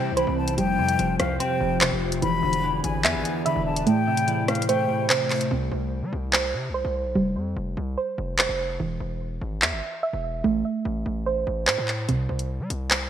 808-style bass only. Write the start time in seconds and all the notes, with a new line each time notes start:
Already playing: C3
0.12 C2
0.27 C2
0.48 B1
0.58 F1
0.78 F2
0.99 F1
1.19 C2
1.61 F1
1.91 F1
2.22 E1
2.43 E1
2.84 G#1
3.04 E2
3.15 G#1
3.56 E1
5.51 C2
5.72 C2
6.02 G3
6.13 C2
6.54 C3
6.69 C2
6.85 C2
7.05 B1
7.15 F1
7.36 F2
7.56 F1
7.77 C2
8.18 F1
8.49 F1
8.80 E1
9.00 E1
9.41 G#1
9.62 E2
9.72 G#1
10.13 E1
10.44 A1
10.85 A1
11.06 A1
11.47 A1
11.67 A2
11.78 A2
12.09 C2
12.29 C2
12.60 G3
12.70 C2